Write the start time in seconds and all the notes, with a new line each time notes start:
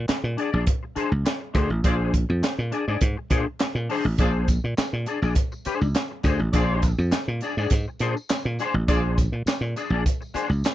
0.08 muted clean electric guitar stroke, muted slap bass stroke, snare, clap, closed hi-hat
0.24 A#2, muted clean electric guitar stroke
0.37 D4 G#4 D5, closed hi-hat
0.52 A#1 D4 G#4 D5
0.67 kick, closed hi-hat
0.83 muted clean electric guitar stroke
0.96 D4 G#4 C5, muted slap bass stroke, closed hi-hat
1.11 C#2, muted clean electric guitar stroke
1.25 muted clean electric guitar stroke, snare, clap, closed hi-hat
1.40 muted clean electric guitar stroke
1.54 D2 D4 G#4 C5, kick, closed hi-hat
1.70 A1, muted clean electric guitar stroke
1.84 A#1 D4 F4 G#4 C5 D5, kick, closed hi-hat
2.14 kick, closed hi-hat
2.29 F2, muted clean electric guitar stroke
2.42 muted clean electric guitar stroke, muted slap bass stroke, snare, clap, closed hi-hat
2.58 A#2, muted clean electric guitar stroke
2.72 D4 G#4 D5, closed hi-hat
2.88 G#2 D4 G#4 D5
3.01 G#2, muted clean electric guitar stroke, kick, closed hi-hat
3.17 muted clean electric guitar stroke
3.30 A#2 D4 G#4 C5, kick, closed hi-hat
3.46 muted clean electric guitar stroke
3.59 muted clean electric guitar stroke, snare, clap, closed hi-hat
3.75 A#2, muted clean electric guitar stroke
3.89 D4 G#4 C5, open hi-hat
4.05 A1, muted clean electric guitar stroke
4.18 A#1 D4 F4 G#4 C5 D5, kick, closed hi-hat, tambourine
4.48 kick, closed hi-hat, tambourine
4.64 A#2, muted clean electric guitar stroke
4.77 muted clean electric guitar stroke, muted slap bass stroke, snare, clap, closed hi-hat, tambourine
4.93 A#2, muted clean electric guitar stroke
5.06 D4 G#4 D5, closed hi-hat, tambourine
5.22 A#1 D4 G#4 D5, tambourine
5.35 muted clean electric guitar stroke, kick, closed hi-hat, tambourine
5.52 muted clean electric guitar stroke, tambourine
5.65 D4 G#4 C5, muted slap bass stroke, closed hi-hat, tambourine
5.81 C#2, muted clean electric guitar stroke, tambourine
5.94 muted clean electric guitar stroke, snare, clap, closed hi-hat, tambourine
6.11 muted clean electric guitar stroke
6.23 D2 D4 G#4 C5, kick, closed hi-hat, tambourine
6.39 A1, muted clean electric guitar stroke
6.53 A#1 D4 F4 G#4 C5 D5, kick, closed hi-hat, tambourine
6.82 kick, closed hi-hat, tambourine
6.98 F2, muted clean electric guitar stroke, tambourine
7.12 muted slap bass stroke, muted clean electric guitar stroke, snare, clap, closed hi-hat, tambourine
7.28 A#2, muted clean electric guitar stroke
7.41 D4 G#4 D5, closed hi-hat, tambourine
7.57 G#2 D4 G#4 D5, tambourine
7.70 G#2, muted clean electric guitar stroke, kick, closed hi-hat, tambourine
7.88 muted clean electric guitar stroke
7.99 A#2 D4 G#4 C5, closed hi-hat, tambourine
8.16 muted clean electric guitar stroke, tambourine
8.29 muted clean electric guitar stroke, snare, clap, closed hi-hat, tambourine
8.45 A#2, muted clean electric guitar stroke
8.59 D4 G#4 C5, closed hi-hat, tambourine
8.74 A1, muted clean electric guitar stroke
8.88 A#1 D4 F4 G#4 C5 D5, kick, closed hi-hat, tambourine
9.18 kick, closed hi-hat, tambourine
9.32 A#2, muted clean electric guitar stroke
9.46 muted slap bass stroke, muted clean electric guitar stroke, snare, clap, closed hi-hat, tambourine
9.61 A#2, muted clean electric guitar stroke
9.76 D4 G#4 D5, closed hi-hat, tambourine
9.90 A#1 D4 G#4 D5
10.06 muted clean electric guitar stroke, kick, closed hi-hat, tambourine
10.21 muted clean electric guitar stroke, tambourine
10.34 D4 G#4 C5, muted slap bass stroke, closed hi-hat, tambourine
10.49 C#2, muted clean electric guitar stroke, tambourine
10.64 muted clean electric guitar stroke, snare, clap, closed hi-hat, tambourine